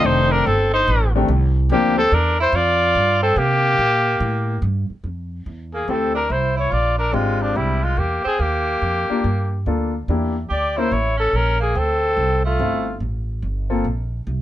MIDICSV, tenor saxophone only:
0, 0, Header, 1, 2, 480
1, 0, Start_track
1, 0, Key_signature, -1, "major"
1, 0, Tempo, 418702
1, 39, Time_signature, 4, 2, 24, 8
1, 16529, End_track
2, 0, Start_track
2, 0, Title_t, "Tenor saxophone"
2, 0, Program_c, 0, 66
2, 47, Note_on_c, 0, 63, 79
2, 368, Note_on_c, 0, 62, 75
2, 385, Note_off_c, 0, 63, 0
2, 532, Note_on_c, 0, 60, 67
2, 549, Note_off_c, 0, 62, 0
2, 833, Note_off_c, 0, 60, 0
2, 840, Note_on_c, 0, 63, 74
2, 1281, Note_off_c, 0, 63, 0
2, 1970, Note_on_c, 0, 58, 67
2, 2249, Note_off_c, 0, 58, 0
2, 2256, Note_on_c, 0, 60, 77
2, 2443, Note_on_c, 0, 62, 81
2, 2460, Note_off_c, 0, 60, 0
2, 2744, Note_off_c, 0, 62, 0
2, 2751, Note_on_c, 0, 64, 79
2, 2921, Note_on_c, 0, 65, 83
2, 2938, Note_off_c, 0, 64, 0
2, 3693, Note_off_c, 0, 65, 0
2, 3700, Note_on_c, 0, 60, 77
2, 3875, Note_on_c, 0, 58, 78
2, 3892, Note_off_c, 0, 60, 0
2, 5309, Note_off_c, 0, 58, 0
2, 6581, Note_on_c, 0, 58, 54
2, 6757, Note_on_c, 0, 60, 50
2, 6774, Note_off_c, 0, 58, 0
2, 7038, Note_off_c, 0, 60, 0
2, 7045, Note_on_c, 0, 62, 60
2, 7214, Note_on_c, 0, 64, 60
2, 7231, Note_off_c, 0, 62, 0
2, 7514, Note_off_c, 0, 64, 0
2, 7520, Note_on_c, 0, 64, 64
2, 7681, Note_on_c, 0, 65, 70
2, 7698, Note_off_c, 0, 64, 0
2, 7996, Note_off_c, 0, 65, 0
2, 8003, Note_on_c, 0, 62, 61
2, 8192, Note_on_c, 0, 56, 54
2, 8209, Note_off_c, 0, 62, 0
2, 8501, Note_on_c, 0, 53, 59
2, 8518, Note_off_c, 0, 56, 0
2, 8668, Note_on_c, 0, 55, 50
2, 8685, Note_off_c, 0, 53, 0
2, 8986, Note_on_c, 0, 56, 61
2, 9003, Note_off_c, 0, 55, 0
2, 9143, Note_on_c, 0, 58, 54
2, 9160, Note_off_c, 0, 56, 0
2, 9442, Note_off_c, 0, 58, 0
2, 9449, Note_on_c, 0, 60, 76
2, 9619, Note_on_c, 0, 58, 64
2, 9636, Note_off_c, 0, 60, 0
2, 11068, Note_off_c, 0, 58, 0
2, 12034, Note_on_c, 0, 67, 65
2, 12345, Note_on_c, 0, 64, 70
2, 12362, Note_off_c, 0, 67, 0
2, 12506, Note_off_c, 0, 64, 0
2, 12506, Note_on_c, 0, 64, 67
2, 12796, Note_off_c, 0, 64, 0
2, 12803, Note_on_c, 0, 61, 68
2, 12986, Note_off_c, 0, 61, 0
2, 12986, Note_on_c, 0, 61, 68
2, 13289, Note_off_c, 0, 61, 0
2, 13295, Note_on_c, 0, 58, 62
2, 13479, Note_on_c, 0, 60, 66
2, 13496, Note_off_c, 0, 58, 0
2, 14256, Note_off_c, 0, 60, 0
2, 14263, Note_on_c, 0, 57, 60
2, 14869, Note_off_c, 0, 57, 0
2, 16529, End_track
0, 0, End_of_file